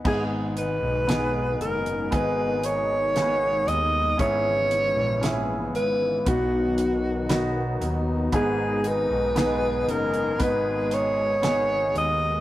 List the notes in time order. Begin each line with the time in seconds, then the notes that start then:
Already playing: G#3 B3 D#4
0.05 G#1 G#2 B2 D#3 G#3 B3 D#4 G#4, kick, crash
0.57 D#4 B4, closed hi-hat
0.83 B1
1.07 B3 D#4 G#4, snare, closed hi-hat
1.60 F#1 A#4, closed hi-hat
1.86 closed hi-hat
2.11 G#1 B3 D#4 G#4 B4, kick, closed hi-hat
2.64 C#5, closed hi-hat
3.15 A#3 D#4 G#4, snare, closed hi-hat
3.22 B3
3.67 D#2 B3 D#5, closed hi-hat
4.18 G#1 G#2 C#3 E3 B3 C#4 E4 G#4 B4 C#5, kick, closed hi-hat
4.71 E4, closed hi-hat
4.96 A#1
5.21 B3 C#4 E4 G#4 B4, snare, closed hi-hat
5.74 G#1 B4, closed hi-hat
6.26 B1 B2 D#3 F#3 B3 D#4 F#4, kick, closed hi-hat
6.78 closed hi-hat
7.29 B3 D#4 F#4, snare, closed hi-hat
7.81 D#2 B3, closed hi-hat
8.32 G#1 G#2 B2 D#3 G#3 B3 D#4 G#4 B4, kick, closed hi-hat
8.84 D#4 B4, closed hi-hat
9.10 B1
9.35 B3 D#4 G#4, snare, closed hi-hat
9.87 F#1 A#4, closed hi-hat
10.14 closed hi-hat
10.39 G#1 B3 D#4 B4, kick, closed hi-hat
10.91 C#5, closed hi-hat
11.42 B3 D#4 G#4, snare, closed hi-hat
11.95 D#2 B3 D#5, closed hi-hat